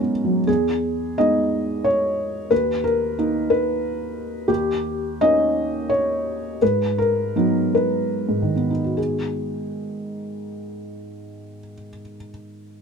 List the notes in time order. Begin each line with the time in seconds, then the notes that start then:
Already playing: G#2 F#3 C#4 D#4 G#4 A#4
0.00 B3
0.25 F#3
0.47 E2 G#4
1.18 G#3 B3 D#4 D#5
1.84 C#5
2.51 D#2 B4
2.84 A#4
3.19 A#3 D#4
3.50 B4
4.48 D#2 G4
5.21 A#3 C#4 D#4 D#5
5.89 C#5
6.62 G#2 B4
6.98 A#4
7.36 F#3 B3 D#4
7.75 B4
8.29 G#2
8.42 D#3
8.56 B3
8.70 D#4
8.84 F#4
8.97 G#4